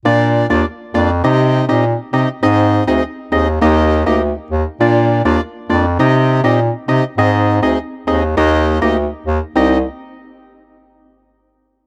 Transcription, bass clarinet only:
\new Staff \with { instrumentName = "Bass clarinet" } { \clef bass \time 4/4 \key c \minor \tempo 4 = 101 bes,8. ees,16 r8 f,8 c8. bes,8 r16 c16 r16 | aes,8. d,16 r8 ees,8 ees,8. d,8 r16 ees,16 r16 | bes,8. ees,16 r8 f,8 c8. bes,8 r16 c16 r16 | aes,8. d,16 r8 ees,8 ees,8. d,8 r16 ees,16 r16 |
c,8 r2. r8 | }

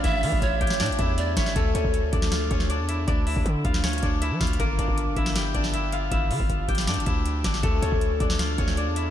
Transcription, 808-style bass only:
\new Staff \with { instrumentName = "808-style bass" } { \clef bass \time 4/4 \key d \minor \tempo 4 = 158 a,,8 e16 a,,16 a,,8 a,,8 a,16 a,,16 e,4 a,,8 | d,8 d,16 d,8. d,4 d,8. e,8. | d,8. d,16 d8 d,4 d,8. f16 d,8 | g,,8 g,,16 g,,8. g,,4 g,,4. |
g,,8 d16 g,,16 g,,8 g,,8 g,16 g,,16 d,4 g,,8 | d,8 d,16 d,8. d,4 d,8. e,8. | }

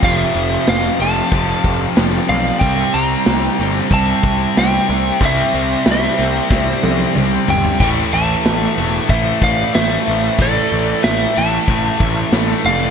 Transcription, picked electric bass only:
\new Staff \with { instrumentName = "Picked electric bass" } { \clef bass \time 4/4 \key c \mixolydian \tempo 4 = 93 f,,8 f,,8 f,,8 f,,8 f,,8 f,,8 f,,8 b,,8 | c,8 c,8 c,8 g,,8 c,8 c,8 c,8 c,8 | c,8 c,8 c,8 c,8 c,8 c,8 c,8 g,,8 | a,,8 a,,8 a,,8 e,,8 a,,8 a,,8 a,,8 a,,8 |
a,,8 a,,8 a,,8 a,,8 a,,8 a,,8 a,,8 f,,8 | }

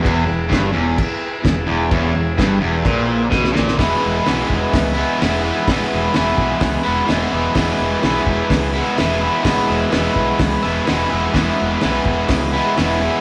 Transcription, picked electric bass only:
\new Staff \with { instrumentName = "Picked electric bass" } { \clef bass \time 4/4 \key e \major \tempo 4 = 127 e,,8 e,,8 g,,8 e,,8 r4 e,,8 e,,8 | e,,8 e,,8 g,,8 e,,8 ais,,4 b,,8 ais,,8 | e,,8 e,,8 b,,8 e,,8 cis,4 e,,4 | a,,8 e,,8 e,,8 b,,8 cis,8 e,,8 e,,8 e,,8 |
e,,8 e,,8 b,,8 e,,8 cis,4 e,,4 | a,,8 e,,8 e,,8 b,,8 cis,8 e,,8 e,,8 e,,8 | e,,8 e,,8 b,,8 e,,8 cis,4 e,,4 | }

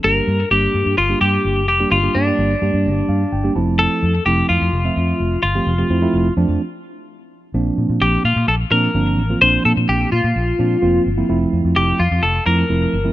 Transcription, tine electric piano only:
<<
  \new Staff \with { instrumentName = "Tine electric piano" } { \time 4/4 \key bes \lydian \tempo 4 = 128 r1 | r2 r8 f''8 g''8 a''8 | r1 | r1 |
r1 | r1 | r1 | }
  \new Staff \with { instrumentName = "Tine electric piano" } { \time 4/4 \key bes \lydian <g bes d' g'>8. r16 <g bes d' g'>4 r16 <g bes d' g'>4 r8 <g bes d' g'>16 | r16 <g bes d' g'>16 <g bes d' g'>16 <g bes d' g'>8 r16 <g bes d' g'>4~ <g bes d' g'>16 r8 <g bes d' g'>16 <f a c' e'>8~ | <f a c' e'>8. r16 <f a c' e'>4 r16 <f a c' e''>4 r8 <f a c' g'>16 | r16 <f a c' g'>16 <f a c' e'>16 <f a c' e'>8 r16 <f a c' d'>8 r2 |
<f bes c' d'>4. r4 <f bes c' d'>16 r16 <f bes c' d'>8 r16 <f bes c' f'>16 | <f bes c' d'>4. r4 <f bes c' d'>16 r16 <f bes c' f'>8 r16 <f bes c' e'>16 | <f a c' e'>4. r4 <f a c' e'>16 r16 <f a c' e'>8 r16 <f a c' e'>16 | }
>>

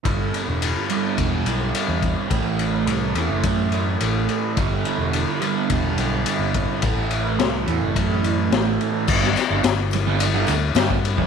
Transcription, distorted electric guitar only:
\new Staff \with { instrumentName = "Distorted electric guitar" } { \clef bass \time 4/4 \key g \major \tempo 4 = 106 <g, d g>4. <g, d g>2~ <g, d g>8 | <a, e a>4. <a, e a>2~ <a, e a>8 | <g, d g>4. <g, d g>2~ <g, d g>8 | <a, e a>4. <a, e a>2~ <a, e a>8 |
<g, d g>16 r8 <g, d g>16 r8. <g, d g>16 r16 <g, d g>16 r8 <g, d g>16 r8 <g, d g>16 | }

